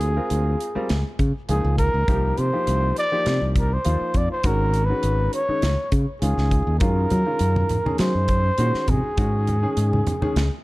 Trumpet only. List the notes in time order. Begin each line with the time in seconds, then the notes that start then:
Already playing: G#4
1.49 G#4
1.78 A#4
2.39 C5
2.99 D5
3.59 A#4
3.73 C5
4.17 D5
4.32 C5
4.46 A#4
4.85 B4
5.34 C#5
6.21 G#4
6.79 A#4
8.00 C5
8.89 G#4